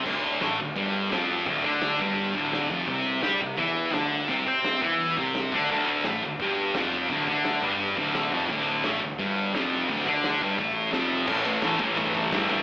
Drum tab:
CC |x---------------|----------------|----------------|----------------|
RD |----------------|----------------|----------------|----------------|
HH |----o---o---o---|o---o---o---o---|o---o---o---o---|o---o---o---o---|
SD |----o-------o--o|----o-------o--o|----o-------o---|----o-------o---|
BD |o-------o-------|o-o---o---o---o-|o-------o-------|o-o---o---o---o-|

CC |----------------|----------------|----------------|----------------|
RD |----------------|----------------|----------------|----------------|
HH |o---o---o---o---|o---o---o---o---|o---o---o---o---|o---o---o---o---|
SD |----o-------o---|----o-------o---|----o-------o---|----o-------o---|
BD |o-------o-------|o-o---o---o---o-|o-------o-------|o-o---o-o-------|

CC |x---------------|
RD |--x-x-x-x-x-x-x-|
HH |----------------|
SD |----o-------o---|
BD |o-----o-o-o-----|